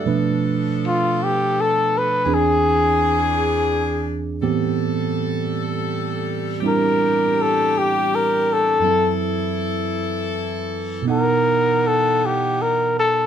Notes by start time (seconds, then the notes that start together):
Already playing: A4 E5
0.04 B2 F3 A3 B3 D4 B4
0.87 F4
1.24 G4
1.61 A4
1.98 B4
2.23 E2 E3 C4 D4 G#4
2.27 D4 G#4
2.34 G#4
4.41 A2 E3 G3 B3 C4 G4 A4
6.61 G3 C4 D4 E4 G4
6.68 A#4
7.41 A4
7.78 G4
8.15 A#4
8.53 A4
8.80 F#2 E3 F#3 E4 A4
8.85 C4 E4
8.91 A4
11.02 B2 B3
11.07 D#4 F#5
11.11 A#4
11.87 A4
12.26 G4
12.62 A#4
12.99 A4